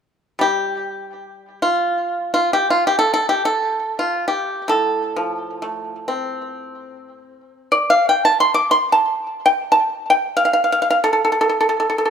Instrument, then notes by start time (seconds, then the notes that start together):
pipa
0.39 G3 G4
1.62 F4
2.34 F4
2.53 G4
2.70 F4
2.87 G4
2.99 A4
3.14 A4
3.29 G4
3.45 A4
3.99 F4
4.28 G4
4.68 A2 A4
5.16 F3
5.62 A3
6.08 C4
7.72 D5
7.90 F5
8.09 G5
8.25 A5
8.40 C6
8.54 D6
8.71 C6
8.92 A5
9.46 G5
9.72 A5
10.10 G5
10.37 F5
10.45 F5
10.53 F5
10.64 F5
10.72 F5
10.82 F5
10.90 F5
11.04 A4
11.13 A4
11.25 A4
11.32 A4
11.41 A4
11.49 A4
11.61 A4
11.69 A4
11.80 A4
11.90 A4
11.98 A4
12.05 A4